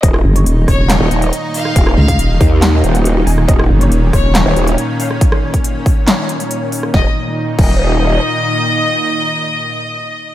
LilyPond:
<<
  \new Staff \with { instrumentName = "Violin section" } { \time 4/4 \key ees \minor \tempo 4 = 139 ees''8. des''8. des''8. r4 r16 f''8~ | f''16 r16 f''8. r8. ges''8. ges''8. aes''8 | ees''8. des''8. des''8. r4 r16 f''8 | r1 |
ees''16 r4 r16 ees''2~ ees''8~ | ees''1 | }
  \new Staff \with { instrumentName = "Analog synth pad" } { \clef bass \time 4/4 \key ees \minor << { ees'1~ | ees'1 | des'1~ | des'1 |
<bes, ees ees'>1~ | <bes, ees ees'>1 | } \\ { <bes, ees>1~ | <bes, ees>1~ | <bes, ees>1~ | <bes, ees>1 |
r1 | r1 | } >> }
  \new Staff \with { instrumentName = "Wobble bass" } { \clef bass \time 4/4 \key ees \minor ees,,8 r4. r16 ees,,16 ees,,8 r4 | ees,,8 r4 ees,4 ees,,4 r8 | ees,,8 r4. r16 ees,,16 ees,,8 r4 | r1 |
ees,,16 r4 r16 ees,,4. r4 | r1 | }
  \new Staff \with { instrumentName = "Wobble bass" } { \clef bass \time 4/4 \key ees \minor r8 ges,,8 ees,,8 ees,,8 r2 | r8 des,8 ees,,8 r2 ees,,8 | r8 ges,,8 ees,,8 ees,,8 r2 | r1 |
r1 | r1 | }
  \new DrumStaff \with { instrumentName = "Drums" } \drummode { \time 4/4 <hh bd>16 ss8 hh16 hh8 <hho bd ss>8 <hc hh ss sn>8 hh16 hh16 hh8 hho16 ss16 | <hh bd>16 ss8 <hh bd>16 hh8 <hho bd>8 <hc hh sn>8 hh16 hh16 hh8 hho16 ss16 | <hh bd>16 ss8 hh16 hh8 <hho bd ss>8 <hc hh ss sn>8 hh16 hh16 hh8 hho16 ss16 | <hh bd>16 ss8 <hh bd>16 hh8 <hho bd>8 <hc hh sn>8 hh16 hh16 hh8 hho16 ss16 |
<bd sn>4 r8 <cymc bd>8 r4 r4 | r4 r4 r4 r4 | }
>>